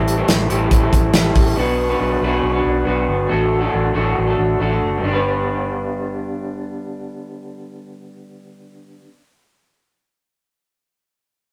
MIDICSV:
0, 0, Header, 1, 5, 480
1, 0, Start_track
1, 0, Key_signature, 1, "major"
1, 0, Tempo, 432277
1, 1750, Time_signature, 4, 2, 24, 8
1, 12802, End_track
2, 0, Start_track
2, 0, Title_t, "Clean electric guitar"
2, 0, Program_c, 0, 27
2, 0, Note_on_c, 0, 55, 57
2, 0, Note_on_c, 0, 60, 59
2, 0, Note_on_c, 0, 64, 68
2, 0, Note_on_c, 0, 69, 68
2, 169, Note_off_c, 0, 69, 0
2, 182, Note_off_c, 0, 60, 0
2, 182, Note_off_c, 0, 64, 0
2, 182, Note_on_c, 0, 69, 66
2, 186, Note_off_c, 0, 55, 0
2, 195, Note_on_c, 0, 60, 65
2, 196, Note_on_c, 0, 64, 68
2, 202, Note_on_c, 0, 55, 58
2, 207, Note_on_c, 0, 52, 58
2, 213, Note_on_c, 0, 45, 57
2, 522, Note_off_c, 0, 52, 0
2, 525, Note_off_c, 0, 45, 0
2, 533, Note_off_c, 0, 60, 0
2, 535, Note_off_c, 0, 55, 0
2, 535, Note_on_c, 0, 52, 76
2, 538, Note_on_c, 0, 45, 71
2, 540, Note_off_c, 0, 64, 0
2, 542, Note_off_c, 0, 69, 0
2, 547, Note_on_c, 0, 60, 83
2, 549, Note_on_c, 0, 55, 82
2, 553, Note_on_c, 0, 64, 80
2, 555, Note_on_c, 0, 69, 76
2, 878, Note_off_c, 0, 69, 0
2, 891, Note_on_c, 0, 69, 53
2, 894, Note_off_c, 0, 64, 0
2, 903, Note_off_c, 0, 52, 0
2, 904, Note_off_c, 0, 45, 0
2, 905, Note_off_c, 0, 60, 0
2, 907, Note_on_c, 0, 64, 53
2, 909, Note_off_c, 0, 55, 0
2, 918, Note_on_c, 0, 60, 52
2, 927, Note_on_c, 0, 55, 44
2, 1233, Note_off_c, 0, 55, 0
2, 1246, Note_on_c, 0, 55, 63
2, 1248, Note_off_c, 0, 60, 0
2, 1258, Note_off_c, 0, 64, 0
2, 1261, Note_off_c, 0, 69, 0
2, 1262, Note_on_c, 0, 60, 58
2, 1272, Note_on_c, 0, 64, 65
2, 1283, Note_on_c, 0, 69, 70
2, 1720, Note_off_c, 0, 55, 0
2, 1724, Note_on_c, 0, 59, 63
2, 1737, Note_off_c, 0, 60, 0
2, 1741, Note_on_c, 0, 62, 62
2, 1748, Note_off_c, 0, 64, 0
2, 1753, Note_on_c, 0, 66, 67
2, 1756, Note_off_c, 0, 69, 0
2, 1769, Note_on_c, 0, 71, 62
2, 2090, Note_off_c, 0, 71, 0
2, 2097, Note_off_c, 0, 59, 0
2, 2097, Note_off_c, 0, 66, 0
2, 2102, Note_off_c, 0, 62, 0
2, 2103, Note_on_c, 0, 71, 76
2, 2111, Note_on_c, 0, 66, 62
2, 2114, Note_on_c, 0, 59, 65
2, 2116, Note_on_c, 0, 62, 66
2, 2122, Note_on_c, 0, 54, 55
2, 2127, Note_on_c, 0, 47, 58
2, 2453, Note_off_c, 0, 47, 0
2, 2456, Note_off_c, 0, 59, 0
2, 2457, Note_off_c, 0, 54, 0
2, 2466, Note_off_c, 0, 62, 0
2, 2466, Note_off_c, 0, 71, 0
2, 2467, Note_on_c, 0, 47, 67
2, 2470, Note_off_c, 0, 66, 0
2, 2470, Note_on_c, 0, 54, 69
2, 2470, Note_on_c, 0, 59, 77
2, 2479, Note_on_c, 0, 62, 81
2, 2481, Note_on_c, 0, 66, 76
2, 2487, Note_on_c, 0, 71, 84
2, 2787, Note_off_c, 0, 71, 0
2, 2800, Note_on_c, 0, 71, 47
2, 2805, Note_off_c, 0, 66, 0
2, 2818, Note_off_c, 0, 62, 0
2, 2819, Note_on_c, 0, 66, 46
2, 2828, Note_off_c, 0, 47, 0
2, 2829, Note_off_c, 0, 54, 0
2, 2829, Note_off_c, 0, 59, 0
2, 2831, Note_on_c, 0, 62, 45
2, 2842, Note_on_c, 0, 59, 40
2, 3138, Note_off_c, 0, 59, 0
2, 3151, Note_on_c, 0, 59, 61
2, 3154, Note_off_c, 0, 62, 0
2, 3167, Note_on_c, 0, 62, 62
2, 3170, Note_off_c, 0, 66, 0
2, 3175, Note_off_c, 0, 71, 0
2, 3183, Note_on_c, 0, 66, 62
2, 3191, Note_on_c, 0, 71, 63
2, 3628, Note_off_c, 0, 59, 0
2, 3633, Note_on_c, 0, 57, 63
2, 3644, Note_off_c, 0, 62, 0
2, 3646, Note_off_c, 0, 66, 0
2, 3649, Note_on_c, 0, 62, 59
2, 3659, Note_on_c, 0, 66, 61
2, 3668, Note_off_c, 0, 71, 0
2, 3673, Note_on_c, 0, 69, 67
2, 3993, Note_off_c, 0, 69, 0
2, 4002, Note_off_c, 0, 66, 0
2, 4005, Note_off_c, 0, 62, 0
2, 4007, Note_on_c, 0, 69, 68
2, 4010, Note_off_c, 0, 57, 0
2, 4015, Note_on_c, 0, 66, 68
2, 4018, Note_on_c, 0, 62, 61
2, 4024, Note_on_c, 0, 57, 58
2, 4027, Note_on_c, 0, 54, 51
2, 4033, Note_on_c, 0, 45, 54
2, 4348, Note_off_c, 0, 45, 0
2, 4361, Note_off_c, 0, 54, 0
2, 4361, Note_on_c, 0, 45, 65
2, 4366, Note_off_c, 0, 57, 0
2, 4371, Note_off_c, 0, 62, 0
2, 4374, Note_on_c, 0, 54, 72
2, 4377, Note_off_c, 0, 69, 0
2, 4378, Note_off_c, 0, 66, 0
2, 4379, Note_on_c, 0, 57, 74
2, 4384, Note_on_c, 0, 62, 72
2, 4391, Note_on_c, 0, 66, 78
2, 4395, Note_on_c, 0, 69, 77
2, 4727, Note_off_c, 0, 69, 0
2, 4735, Note_off_c, 0, 45, 0
2, 4740, Note_on_c, 0, 69, 54
2, 4741, Note_off_c, 0, 54, 0
2, 4744, Note_off_c, 0, 57, 0
2, 4746, Note_off_c, 0, 62, 0
2, 4750, Note_off_c, 0, 66, 0
2, 4761, Note_on_c, 0, 66, 44
2, 4770, Note_on_c, 0, 62, 41
2, 4784, Note_on_c, 0, 57, 44
2, 5081, Note_off_c, 0, 57, 0
2, 5094, Note_on_c, 0, 57, 50
2, 5098, Note_off_c, 0, 62, 0
2, 5104, Note_off_c, 0, 69, 0
2, 5110, Note_off_c, 0, 66, 0
2, 5111, Note_on_c, 0, 62, 59
2, 5123, Note_on_c, 0, 66, 59
2, 5132, Note_on_c, 0, 69, 61
2, 5521, Note_off_c, 0, 57, 0
2, 5525, Note_on_c, 0, 55, 67
2, 5592, Note_off_c, 0, 62, 0
2, 5596, Note_off_c, 0, 66, 0
2, 5597, Note_on_c, 0, 62, 75
2, 5600, Note_off_c, 0, 69, 0
2, 5643, Note_on_c, 0, 67, 74
2, 5697, Note_on_c, 0, 71, 80
2, 9978, Note_off_c, 0, 55, 0
2, 10049, Note_off_c, 0, 62, 0
2, 10096, Note_off_c, 0, 67, 0
2, 10150, Note_off_c, 0, 71, 0
2, 12802, End_track
3, 0, Start_track
3, 0, Title_t, "Clean electric guitar"
3, 0, Program_c, 1, 27
3, 0, Note_on_c, 1, 45, 76
3, 0, Note_on_c, 1, 67, 67
3, 79, Note_on_c, 1, 55, 52
3, 309, Note_on_c, 1, 60, 53
3, 548, Note_off_c, 1, 67, 0
3, 561, Note_on_c, 1, 67, 64
3, 797, Note_on_c, 1, 52, 66
3, 1024, Note_off_c, 1, 60, 0
3, 1037, Note_on_c, 1, 60, 52
3, 1263, Note_off_c, 1, 67, 0
3, 1276, Note_on_c, 1, 67, 57
3, 1503, Note_off_c, 1, 55, 0
3, 1517, Note_on_c, 1, 55, 49
3, 1744, Note_off_c, 1, 45, 0
3, 1748, Note_on_c, 1, 47, 74
3, 1753, Note_off_c, 1, 67, 0
3, 1758, Note_on_c, 1, 66, 64
3, 1801, Note_off_c, 1, 52, 0
3, 1801, Note_off_c, 1, 55, 0
3, 1801, Note_off_c, 1, 60, 0
3, 1988, Note_on_c, 1, 59, 52
3, 2222, Note_on_c, 1, 62, 53
3, 2456, Note_off_c, 1, 66, 0
3, 2460, Note_on_c, 1, 64, 60
3, 2583, Note_off_c, 1, 64, 0
3, 2583, Note_on_c, 1, 66, 50
3, 2705, Note_on_c, 1, 54, 68
3, 2936, Note_off_c, 1, 62, 0
3, 2941, Note_on_c, 1, 62, 51
3, 3175, Note_off_c, 1, 66, 0
3, 3189, Note_on_c, 1, 66, 62
3, 3412, Note_off_c, 1, 59, 0
3, 3425, Note_on_c, 1, 59, 52
3, 3662, Note_off_c, 1, 66, 0
3, 3663, Note_off_c, 1, 47, 0
3, 3668, Note_on_c, 1, 45, 74
3, 3675, Note_on_c, 1, 66, 59
3, 3714, Note_off_c, 1, 54, 0
3, 3715, Note_off_c, 1, 59, 0
3, 3913, Note_on_c, 1, 57, 51
3, 4151, Note_off_c, 1, 62, 0
3, 4156, Note_on_c, 1, 62, 51
3, 4381, Note_off_c, 1, 66, 0
3, 4394, Note_on_c, 1, 66, 62
3, 4636, Note_on_c, 1, 50, 63
3, 4871, Note_off_c, 1, 62, 0
3, 4875, Note_on_c, 1, 62, 47
3, 5111, Note_off_c, 1, 66, 0
3, 5119, Note_on_c, 1, 64, 55
3, 5236, Note_off_c, 1, 64, 0
3, 5236, Note_on_c, 1, 66, 47
3, 5338, Note_off_c, 1, 57, 0
3, 5352, Note_on_c, 1, 57, 48
3, 5531, Note_off_c, 1, 45, 0
3, 5535, Note_on_c, 1, 43, 72
3, 5591, Note_off_c, 1, 50, 0
3, 5596, Note_on_c, 1, 50, 66
3, 5638, Note_off_c, 1, 57, 0
3, 5640, Note_off_c, 1, 66, 0
3, 5645, Note_on_c, 1, 55, 69
3, 5685, Note_off_c, 1, 62, 0
3, 5689, Note_on_c, 1, 59, 72
3, 5731, Note_on_c, 1, 62, 78
3, 9988, Note_off_c, 1, 43, 0
3, 10048, Note_off_c, 1, 50, 0
3, 10098, Note_off_c, 1, 55, 0
3, 10142, Note_off_c, 1, 59, 0
3, 10184, Note_off_c, 1, 62, 0
3, 12802, End_track
4, 0, Start_track
4, 0, Title_t, "Fingered electric bass"
4, 0, Program_c, 2, 33
4, 0, Note_on_c, 2, 33, 83
4, 227, Note_off_c, 2, 33, 0
4, 320, Note_on_c, 2, 33, 82
4, 513, Note_off_c, 2, 33, 0
4, 558, Note_on_c, 2, 33, 81
4, 751, Note_off_c, 2, 33, 0
4, 789, Note_on_c, 2, 33, 88
4, 986, Note_off_c, 2, 33, 0
4, 1024, Note_on_c, 2, 33, 85
4, 1223, Note_off_c, 2, 33, 0
4, 1269, Note_on_c, 2, 33, 84
4, 1466, Note_off_c, 2, 33, 0
4, 1504, Note_on_c, 2, 33, 81
4, 1703, Note_off_c, 2, 33, 0
4, 1748, Note_on_c, 2, 35, 89
4, 2142, Note_off_c, 2, 35, 0
4, 2225, Note_on_c, 2, 35, 90
4, 2423, Note_off_c, 2, 35, 0
4, 2456, Note_on_c, 2, 35, 75
4, 2658, Note_off_c, 2, 35, 0
4, 2699, Note_on_c, 2, 35, 89
4, 2900, Note_off_c, 2, 35, 0
4, 2940, Note_on_c, 2, 35, 84
4, 3141, Note_off_c, 2, 35, 0
4, 3183, Note_on_c, 2, 35, 79
4, 3382, Note_off_c, 2, 35, 0
4, 3416, Note_on_c, 2, 31, 76
4, 3618, Note_off_c, 2, 31, 0
4, 3670, Note_on_c, 2, 33, 73
4, 4063, Note_off_c, 2, 33, 0
4, 4149, Note_on_c, 2, 33, 75
4, 4345, Note_off_c, 2, 33, 0
4, 4386, Note_on_c, 2, 33, 70
4, 4583, Note_off_c, 2, 33, 0
4, 4635, Note_on_c, 2, 33, 81
4, 4829, Note_off_c, 2, 33, 0
4, 4868, Note_on_c, 2, 33, 82
4, 5065, Note_off_c, 2, 33, 0
4, 5103, Note_on_c, 2, 33, 79
4, 5302, Note_off_c, 2, 33, 0
4, 5586, Note_on_c, 2, 31, 70
4, 9994, Note_off_c, 2, 31, 0
4, 12802, End_track
5, 0, Start_track
5, 0, Title_t, "Drums"
5, 86, Note_on_c, 9, 42, 64
5, 197, Note_off_c, 9, 42, 0
5, 313, Note_on_c, 9, 42, 72
5, 318, Note_on_c, 9, 38, 84
5, 424, Note_off_c, 9, 42, 0
5, 429, Note_off_c, 9, 38, 0
5, 556, Note_on_c, 9, 42, 67
5, 667, Note_off_c, 9, 42, 0
5, 790, Note_on_c, 9, 36, 76
5, 790, Note_on_c, 9, 42, 81
5, 901, Note_off_c, 9, 36, 0
5, 901, Note_off_c, 9, 42, 0
5, 1029, Note_on_c, 9, 36, 76
5, 1036, Note_on_c, 9, 42, 68
5, 1140, Note_off_c, 9, 36, 0
5, 1147, Note_off_c, 9, 42, 0
5, 1261, Note_on_c, 9, 42, 76
5, 1262, Note_on_c, 9, 38, 104
5, 1372, Note_off_c, 9, 42, 0
5, 1373, Note_off_c, 9, 38, 0
5, 1500, Note_on_c, 9, 46, 80
5, 1506, Note_on_c, 9, 36, 86
5, 1612, Note_off_c, 9, 46, 0
5, 1617, Note_off_c, 9, 36, 0
5, 12802, End_track
0, 0, End_of_file